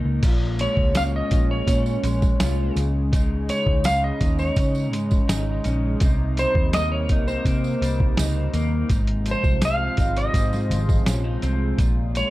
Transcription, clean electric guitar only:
0.00 0.23 C3 medium
0.00 0.61 A#3 medium
0.00 0.31 D#4 medium
0.00 0.23 G4 medium
0.23 2.84 A#2 medium
0.23 1.31 F4 medium
0.61 2.03 G#3 medium
0.97 1.69 C#4 medium
1.33 2.39 F4 medium
1.69 3.16 C#4 medium
2.04 3.49 G#3 medium
2.41 2.84 F4 medium
2.77 3.11 C#3 medium
3.13 6.01 C#3 medium
3.13 4.20 D#4 medium
3.49 4.91 G#3 medium
3.86 4.56 C#4 medium
4.20 5.27 D#4 medium
4.57 5.64 C#4 medium
4.92 6.08 G#3 medium
5.28 6.02 D#4 medium
5.65 6.09 C#4 medium
6.01 8.90 C3 medium
6.01 7.09 D#4 medium
6.37 7.80 G3 medium
6.74 7.45 A#3 medium
7.09 8.18 D#4 medium
7.46 8.52 A#3 medium
7.82 8.97 G3 medium
8.18 8.89 D#4 medium
8.54 8.97 A#3 medium
8.89 11.78 G#2 medium
8.89 9.96 D#4 medium
9.26 10.69 F3 medium
9.61 10.32 C4 medium
9.97 11.05 D#4 medium
10.33 11.42 C4 medium
10.69 12.15 F3 medium
11.06 11.24 C#4 medium
11.24 11.78 D#4 medium
11.43 11.86 C4 medium
11.78 12.30 A#2 medium
11.78 12.30 F4 medium
12.16 12.30 G#3 medium

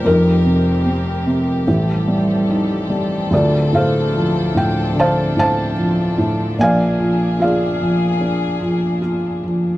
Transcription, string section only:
0.00 1.65 F3 medium
0.00 1.65 C4 medium
0.00 3.29 G4 medium
0.00 1.64 A#4 medium
1.66 3.30 G3 medium
1.66 6.54 C4 medium
1.66 6.54 A4 medium
3.33 9.78 F3 medium
3.33 9.78 D4 medium
6.59 9.78 A#3 medium
6.59 9.78 G#4 medium

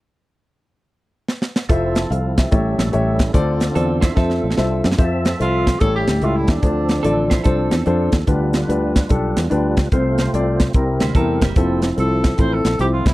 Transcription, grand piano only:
1.69 1.96 F4 medium
1.69 1.97 A4 medium
1.69 1.96 C5 medium
1.69 1.97 E5 loud
1.96 2.10 C5 medium
1.96 2.10 A5 medium
2.11 2.37 A4 medium
2.11 2.36 F5 medium
2.38 2.50 G4 soft
2.38 2.51 E5 medium
2.51 3.16 A2 medium
2.51 2.78 G4 medium
2.51 2.79 A4 medium
2.51 2.79 C#5 medium
2.51 2.79 E5 medium
2.92 3.19 G4 medium
2.92 3.20 A4 medium
2.92 3.20 C#5 medium
2.92 3.20 E5 loud
3.33 3.98 D3 medium
3.33 3.61 F4 medium
3.33 3.61 A4 loud
3.33 3.61 C5 loud
3.33 3.61 D5 loud
3.75 4.02 F4 medium
3.75 4.02 A4 medium
3.75 4.02 C5 medium
3.75 4.03 D5 medium
4.16 4.43 F4 medium
4.16 4.43 A4 medium
4.16 4.43 C5 medium
4.16 4.44 E5 medium
4.57 4.84 F4 medium
4.57 4.84 A4 medium
4.57 4.85 C5 medium
4.57 4.85 E5 medium
4.97 5.25 F4 medium
4.97 5.25 A4 medium
4.97 5.25 C5 medium
4.97 5.26 E5 medium
5.39 5.66 F4 medium
5.39 5.67 A4 medium
5.39 5.67 C5 medium
5.39 5.67 E5 medium
5.80 6.45 A2 medium
5.80 6.08 E4 medium
5.80 6.08 G4 medium
5.80 6.08 A4 medium
5.80 6.08 C#5 medium
6.22 6.49 E4 medium
6.22 6.49 G4 medium
6.22 6.49 A4 medium
6.22 6.50 E5 medium
6.62 7.27 D3 medium
6.62 6.90 D4 medium
6.62 6.90 F4 medium
6.62 6.90 A4 medium
6.62 6.90 C5 medium
7.03 7.31 D4 medium
7.03 7.31 F4 medium
7.03 7.31 A4 medium
7.03 7.32 D5 medium
7.45 7.72 D4 medium
7.45 7.72 F4 medium
7.45 7.73 A4 medium
7.45 7.73 C5 medium
7.86 8.13 D4 medium
7.86 8.14 F4 medium
7.86 8.14 A4 medium
7.86 8.14 C5 medium
8.27 8.92 D3 medium
8.27 8.54 D4 medium
8.27 8.54 F4 medium
8.27 8.55 G4 medium
8.27 8.55 B4 medium
8.68 8.95 D4 medium
8.68 8.96 F4 medium
8.68 8.96 G4 medium
8.68 8.96 B4 medium
9.09 9.36 D4 medium
9.09 9.37 F4 medium
9.09 9.37 G4 medium
9.09 9.37 A4 medium
9.50 9.78 D4 medium
9.50 9.78 F4 medium
9.50 9.78 G4 medium
9.50 9.78 B4 medium
9.92 10.56 C3 medium
9.92 10.19 C4 medium
9.92 10.19 F4 medium
9.92 10.19 A4 medium
9.92 10.20 C5 medium
10.33 10.60 C4 medium
10.33 10.60 F4 medium
10.33 10.60 A4 medium
10.33 10.61 D5 medium
10.74 11.39 C3 medium
10.74 11.01 C4 medium
10.74 11.02 E4 medium
10.74 11.02 G4 medium
10.74 11.02 A#4 medium
11.15 11.42 C4 medium
11.15 11.43 E4 medium
11.15 11.43 G4 medium
11.15 11.43 A#4 medium
11.56 11.83 C4 medium
11.56 11.83 E4 medium
11.56 11.84 F4 medium
11.56 11.84 A4 medium
11.96 12.24 C4 medium
11.96 12.24 E4 medium
11.96 12.24 F4 medium
11.96 12.24 A4 medium
12.38 12.65 C4 medium
12.38 12.65 E4 medium
12.38 12.65 F4 medium
12.38 12.66 A4 medium
12.79 13.06 C4 medium
12.79 13.06 E4 medium
12.79 13.07 F4 medium
12.79 13.07 C5 medium

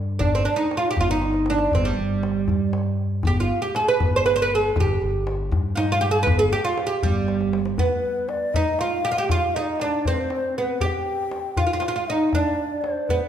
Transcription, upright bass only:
0.00 0.17 G2 medium
0.20 0.44 G1 loud
0.97 1.69 G1 medium
1.73 1.97 G1 medium
1.99 2.46 G1 medium
2.49 3.21 G2 medium
3.25 3.48 G1 loud
4.01 4.72 G1 medium
4.77 5.00 G1 medium
5.01 5.49 G1 medium
5.52 6.24 G2 medium
6.27 6.51 G1 loud
7.04 7.75 G1 medium

